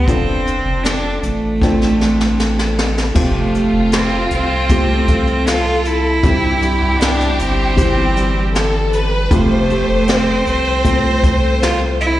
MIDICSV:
0, 0, Header, 1, 7, 480
1, 0, Start_track
1, 0, Tempo, 769231
1, 49, Time_signature, 4, 2, 24, 8
1, 7612, End_track
2, 0, Start_track
2, 0, Title_t, "Violin section"
2, 0, Program_c, 0, 48
2, 1969, Note_on_c, 0, 65, 92
2, 3384, Note_off_c, 0, 65, 0
2, 3415, Note_on_c, 0, 69, 93
2, 3890, Note_on_c, 0, 67, 95
2, 3892, Note_off_c, 0, 69, 0
2, 5305, Note_off_c, 0, 67, 0
2, 5329, Note_on_c, 0, 69, 99
2, 5569, Note_off_c, 0, 69, 0
2, 5570, Note_on_c, 0, 71, 100
2, 5810, Note_off_c, 0, 71, 0
2, 5815, Note_on_c, 0, 72, 114
2, 7612, Note_off_c, 0, 72, 0
2, 7612, End_track
3, 0, Start_track
3, 0, Title_t, "Cello"
3, 0, Program_c, 1, 42
3, 36, Note_on_c, 1, 60, 92
3, 520, Note_on_c, 1, 62, 80
3, 530, Note_off_c, 1, 60, 0
3, 763, Note_on_c, 1, 57, 83
3, 772, Note_off_c, 1, 62, 0
3, 1726, Note_off_c, 1, 57, 0
3, 1981, Note_on_c, 1, 57, 83
3, 2430, Note_off_c, 1, 57, 0
3, 2463, Note_on_c, 1, 60, 87
3, 2680, Note_off_c, 1, 60, 0
3, 2706, Note_on_c, 1, 60, 95
3, 3419, Note_on_c, 1, 65, 96
3, 3429, Note_off_c, 1, 60, 0
3, 3663, Note_on_c, 1, 64, 98
3, 3673, Note_off_c, 1, 65, 0
3, 4372, Note_on_c, 1, 62, 91
3, 4381, Note_off_c, 1, 64, 0
3, 4620, Note_on_c, 1, 60, 90
3, 4629, Note_off_c, 1, 62, 0
3, 5575, Note_off_c, 1, 60, 0
3, 5808, Note_on_c, 1, 57, 91
3, 6287, Note_on_c, 1, 60, 84
3, 6296, Note_off_c, 1, 57, 0
3, 6515, Note_off_c, 1, 60, 0
3, 6519, Note_on_c, 1, 60, 105
3, 7219, Note_off_c, 1, 60, 0
3, 7252, Note_on_c, 1, 65, 96
3, 7359, Note_off_c, 1, 65, 0
3, 7493, Note_on_c, 1, 64, 105
3, 7612, Note_off_c, 1, 64, 0
3, 7612, End_track
4, 0, Start_track
4, 0, Title_t, "Felt piano"
4, 0, Program_c, 2, 0
4, 0, Control_c, 2, 64, 127
4, 47, Note_on_c, 2, 60, 64
4, 51, Note_on_c, 2, 62, 56
4, 53, Note_on_c, 2, 65, 60
4, 56, Note_on_c, 2, 53, 56
4, 57, Control_c, 2, 64, 0
4, 58, Note_on_c, 2, 69, 66
4, 162, Control_c, 2, 64, 127
4, 747, Note_off_c, 2, 53, 0
4, 960, Note_off_c, 2, 60, 0
4, 962, Note_off_c, 2, 62, 0
4, 963, Note_off_c, 2, 65, 0
4, 966, Note_off_c, 2, 69, 0
4, 1007, Note_on_c, 2, 60, 69
4, 1013, Note_on_c, 2, 62, 57
4, 1014, Note_on_c, 2, 65, 57
4, 1021, Note_on_c, 2, 69, 69
4, 1920, Note_off_c, 2, 60, 0
4, 1923, Note_off_c, 2, 62, 0
4, 1924, Note_off_c, 2, 65, 0
4, 1927, Note_off_c, 2, 69, 0
4, 1964, Note_on_c, 2, 57, 63
4, 1970, Note_on_c, 2, 60, 57
4, 1974, Note_on_c, 2, 48, 54
4, 1975, Note_on_c, 2, 65, 59
4, 1977, Note_on_c, 2, 67, 69
4, 1978, Control_c, 2, 64, 0
4, 2091, Control_c, 2, 64, 127
4, 2667, Note_off_c, 2, 48, 0
4, 2879, Note_off_c, 2, 57, 0
4, 2882, Note_off_c, 2, 60, 0
4, 2884, Note_off_c, 2, 65, 0
4, 2885, Note_off_c, 2, 67, 0
4, 2936, Note_on_c, 2, 57, 63
4, 2937, Note_on_c, 2, 60, 59
4, 2941, Note_on_c, 2, 53, 59
4, 2944, Note_on_c, 2, 67, 68
4, 3844, Note_off_c, 2, 57, 0
4, 3845, Note_off_c, 2, 60, 0
4, 3847, Note_off_c, 2, 53, 0
4, 3848, Note_off_c, 2, 67, 0
4, 3890, Note_on_c, 2, 55, 64
4, 3893, Note_on_c, 2, 60, 61
4, 3895, Note_on_c, 2, 43, 57
4, 3896, Control_c, 2, 64, 0
4, 3897, Note_on_c, 2, 64, 60
4, 3900, Note_on_c, 2, 67, 72
4, 4022, Control_c, 2, 64, 127
4, 4587, Note_off_c, 2, 43, 0
4, 4801, Note_off_c, 2, 55, 0
4, 4803, Note_off_c, 2, 60, 0
4, 4805, Note_off_c, 2, 64, 0
4, 4807, Note_off_c, 2, 67, 0
4, 4845, Note_on_c, 2, 55, 66
4, 4848, Note_on_c, 2, 60, 63
4, 4852, Note_on_c, 2, 64, 62
4, 4856, Note_on_c, 2, 67, 74
4, 5759, Note_off_c, 2, 55, 0
4, 5760, Note_off_c, 2, 60, 0
4, 5763, Note_off_c, 2, 64, 0
4, 5764, Note_off_c, 2, 67, 0
4, 5809, Note_on_c, 2, 57, 65
4, 5809, Note_on_c, 2, 60, 64
4, 5812, Note_on_c, 2, 48, 58
4, 5816, Note_on_c, 2, 65, 59
4, 5817, Control_c, 2, 64, 0
4, 5818, Note_on_c, 2, 67, 70
4, 5915, Control_c, 2, 64, 127
4, 6506, Note_off_c, 2, 48, 0
4, 6721, Note_off_c, 2, 57, 0
4, 6721, Note_off_c, 2, 60, 0
4, 6725, Note_off_c, 2, 65, 0
4, 6726, Note_off_c, 2, 67, 0
4, 6767, Note_on_c, 2, 57, 67
4, 6772, Note_on_c, 2, 60, 60
4, 6775, Note_on_c, 2, 53, 65
4, 6776, Note_on_c, 2, 69, 72
4, 7612, Note_off_c, 2, 53, 0
4, 7612, Note_off_c, 2, 57, 0
4, 7612, Note_off_c, 2, 60, 0
4, 7612, Note_off_c, 2, 69, 0
4, 7612, End_track
5, 0, Start_track
5, 0, Title_t, "Steel-string acoustic guitar"
5, 0, Program_c, 3, 25
5, 0, Note_on_c, 3, 59, 51
5, 0, Note_on_c, 3, 67, 52
5, 49, Note_on_c, 3, 53, 73
5, 97, Note_off_c, 3, 59, 0
5, 99, Note_off_c, 3, 67, 0
5, 290, Note_on_c, 3, 62, 56
5, 528, Note_on_c, 3, 69, 60
5, 1009, Note_on_c, 3, 60, 63
5, 1242, Note_off_c, 3, 62, 0
5, 1249, Note_on_c, 3, 62, 58
5, 1488, Note_off_c, 3, 69, 0
5, 1491, Note_on_c, 3, 69, 64
5, 1965, Note_off_c, 3, 53, 0
5, 1967, Note_on_c, 3, 53, 76
5, 2017, Note_off_c, 3, 62, 0
5, 2208, Note_off_c, 3, 60, 0
5, 2211, Note_on_c, 3, 57, 56
5, 2214, Note_on_c, 3, 60, 56
5, 2216, Note_off_c, 3, 69, 0
5, 2218, Note_on_c, 3, 67, 61
5, 2926, Note_off_c, 3, 57, 0
5, 2933, Note_on_c, 3, 57, 69
5, 3166, Note_off_c, 3, 57, 0
5, 3174, Note_on_c, 3, 57, 52
5, 3888, Note_off_c, 3, 53, 0
5, 3891, Note_on_c, 3, 48, 72
5, 3939, Note_off_c, 3, 57, 0
5, 4131, Note_on_c, 3, 55, 56
5, 4132, Note_off_c, 3, 60, 0
5, 4134, Note_on_c, 3, 60, 58
5, 4136, Note_off_c, 3, 67, 0
5, 4139, Note_on_c, 3, 64, 61
5, 4854, Note_on_c, 3, 52, 68
5, 5089, Note_off_c, 3, 55, 0
5, 5091, Note_on_c, 3, 55, 55
5, 5810, Note_off_c, 3, 48, 0
5, 5812, Note_off_c, 3, 52, 0
5, 5814, Note_on_c, 3, 53, 78
5, 5862, Note_off_c, 3, 64, 0
5, 6053, Note_off_c, 3, 55, 0
5, 6055, Note_on_c, 3, 57, 57
5, 6056, Note_off_c, 3, 60, 0
5, 6058, Note_on_c, 3, 60, 61
5, 6064, Note_on_c, 3, 67, 62
5, 6768, Note_off_c, 3, 57, 0
5, 6771, Note_on_c, 3, 57, 66
5, 7008, Note_off_c, 3, 57, 0
5, 7011, Note_on_c, 3, 57, 54
5, 7612, Note_off_c, 3, 53, 0
5, 7612, Note_off_c, 3, 57, 0
5, 7612, Note_off_c, 3, 60, 0
5, 7612, Note_off_c, 3, 67, 0
5, 7612, End_track
6, 0, Start_track
6, 0, Title_t, "Sub bass"
6, 0, Program_c, 4, 38
6, 47, Note_on_c, 4, 29, 94
6, 383, Note_off_c, 4, 29, 0
6, 405, Note_on_c, 4, 29, 89
6, 742, Note_off_c, 4, 29, 0
6, 765, Note_on_c, 4, 33, 85
6, 1942, Note_off_c, 4, 33, 0
6, 1967, Note_on_c, 4, 29, 91
6, 2303, Note_off_c, 4, 29, 0
6, 2327, Note_on_c, 4, 29, 89
6, 2663, Note_off_c, 4, 29, 0
6, 2689, Note_on_c, 4, 36, 88
6, 3864, Note_off_c, 4, 36, 0
6, 3890, Note_on_c, 4, 36, 102
6, 4225, Note_off_c, 4, 36, 0
6, 4253, Note_on_c, 4, 36, 97
6, 4586, Note_off_c, 4, 36, 0
6, 4619, Note_on_c, 4, 31, 91
6, 5789, Note_off_c, 4, 31, 0
6, 5811, Note_on_c, 4, 29, 102
6, 6145, Note_off_c, 4, 29, 0
6, 6171, Note_on_c, 4, 29, 91
6, 6505, Note_off_c, 4, 29, 0
6, 6530, Note_on_c, 4, 36, 90
6, 7612, Note_off_c, 4, 36, 0
6, 7612, End_track
7, 0, Start_track
7, 0, Title_t, "Drums"
7, 48, Note_on_c, 9, 36, 90
7, 48, Note_on_c, 9, 42, 73
7, 110, Note_off_c, 9, 36, 0
7, 111, Note_off_c, 9, 42, 0
7, 293, Note_on_c, 9, 42, 58
7, 355, Note_off_c, 9, 42, 0
7, 525, Note_on_c, 9, 42, 80
7, 534, Note_on_c, 9, 38, 110
7, 588, Note_off_c, 9, 42, 0
7, 597, Note_off_c, 9, 38, 0
7, 767, Note_on_c, 9, 42, 72
7, 829, Note_off_c, 9, 42, 0
7, 1008, Note_on_c, 9, 36, 75
7, 1013, Note_on_c, 9, 38, 53
7, 1070, Note_off_c, 9, 36, 0
7, 1076, Note_off_c, 9, 38, 0
7, 1132, Note_on_c, 9, 38, 47
7, 1195, Note_off_c, 9, 38, 0
7, 1254, Note_on_c, 9, 38, 58
7, 1317, Note_off_c, 9, 38, 0
7, 1376, Note_on_c, 9, 38, 60
7, 1438, Note_off_c, 9, 38, 0
7, 1496, Note_on_c, 9, 38, 75
7, 1558, Note_off_c, 9, 38, 0
7, 1616, Note_on_c, 9, 38, 70
7, 1678, Note_off_c, 9, 38, 0
7, 1738, Note_on_c, 9, 38, 93
7, 1801, Note_off_c, 9, 38, 0
7, 1859, Note_on_c, 9, 38, 77
7, 1921, Note_off_c, 9, 38, 0
7, 1967, Note_on_c, 9, 49, 88
7, 1969, Note_on_c, 9, 36, 98
7, 2029, Note_off_c, 9, 49, 0
7, 2032, Note_off_c, 9, 36, 0
7, 2213, Note_on_c, 9, 42, 59
7, 2275, Note_off_c, 9, 42, 0
7, 2444, Note_on_c, 9, 42, 80
7, 2453, Note_on_c, 9, 38, 116
7, 2506, Note_off_c, 9, 42, 0
7, 2515, Note_off_c, 9, 38, 0
7, 2686, Note_on_c, 9, 42, 78
7, 2748, Note_off_c, 9, 42, 0
7, 2927, Note_on_c, 9, 42, 87
7, 2930, Note_on_c, 9, 36, 80
7, 2989, Note_off_c, 9, 42, 0
7, 2992, Note_off_c, 9, 36, 0
7, 3168, Note_on_c, 9, 42, 70
7, 3171, Note_on_c, 9, 36, 77
7, 3230, Note_off_c, 9, 42, 0
7, 3234, Note_off_c, 9, 36, 0
7, 3287, Note_on_c, 9, 42, 47
7, 3350, Note_off_c, 9, 42, 0
7, 3410, Note_on_c, 9, 42, 80
7, 3416, Note_on_c, 9, 38, 100
7, 3473, Note_off_c, 9, 42, 0
7, 3478, Note_off_c, 9, 38, 0
7, 3650, Note_on_c, 9, 42, 71
7, 3712, Note_off_c, 9, 42, 0
7, 3890, Note_on_c, 9, 36, 95
7, 3890, Note_on_c, 9, 42, 77
7, 3952, Note_off_c, 9, 42, 0
7, 3953, Note_off_c, 9, 36, 0
7, 4131, Note_on_c, 9, 42, 63
7, 4194, Note_off_c, 9, 42, 0
7, 4371, Note_on_c, 9, 42, 82
7, 4380, Note_on_c, 9, 38, 112
7, 4434, Note_off_c, 9, 42, 0
7, 4443, Note_off_c, 9, 38, 0
7, 4494, Note_on_c, 9, 42, 54
7, 4557, Note_off_c, 9, 42, 0
7, 4612, Note_on_c, 9, 42, 79
7, 4674, Note_off_c, 9, 42, 0
7, 4852, Note_on_c, 9, 36, 79
7, 4852, Note_on_c, 9, 42, 92
7, 4914, Note_off_c, 9, 36, 0
7, 4914, Note_off_c, 9, 42, 0
7, 5095, Note_on_c, 9, 42, 74
7, 5157, Note_off_c, 9, 42, 0
7, 5334, Note_on_c, 9, 42, 80
7, 5340, Note_on_c, 9, 38, 102
7, 5397, Note_off_c, 9, 42, 0
7, 5402, Note_off_c, 9, 38, 0
7, 5571, Note_on_c, 9, 42, 73
7, 5634, Note_off_c, 9, 42, 0
7, 5808, Note_on_c, 9, 42, 80
7, 5809, Note_on_c, 9, 36, 101
7, 5871, Note_off_c, 9, 42, 0
7, 5872, Note_off_c, 9, 36, 0
7, 6051, Note_on_c, 9, 42, 62
7, 6113, Note_off_c, 9, 42, 0
7, 6288, Note_on_c, 9, 42, 83
7, 6297, Note_on_c, 9, 38, 108
7, 6350, Note_off_c, 9, 42, 0
7, 6359, Note_off_c, 9, 38, 0
7, 6529, Note_on_c, 9, 42, 78
7, 6592, Note_off_c, 9, 42, 0
7, 6768, Note_on_c, 9, 42, 92
7, 6769, Note_on_c, 9, 36, 83
7, 6831, Note_off_c, 9, 36, 0
7, 6831, Note_off_c, 9, 42, 0
7, 7010, Note_on_c, 9, 42, 71
7, 7011, Note_on_c, 9, 36, 84
7, 7073, Note_off_c, 9, 36, 0
7, 7073, Note_off_c, 9, 42, 0
7, 7252, Note_on_c, 9, 42, 77
7, 7257, Note_on_c, 9, 38, 103
7, 7314, Note_off_c, 9, 42, 0
7, 7319, Note_off_c, 9, 38, 0
7, 7491, Note_on_c, 9, 42, 72
7, 7554, Note_off_c, 9, 42, 0
7, 7612, End_track
0, 0, End_of_file